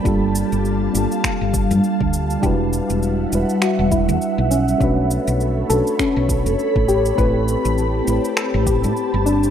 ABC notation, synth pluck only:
X:1
M:4/4
L:1/8
Q:"Swing 16ths" 1/4=101
K:Ador
V:1 name="Synth pluck"
z8 | G z3 F E z ^C | z3 A ^C z2 G | B z3 A G z D |]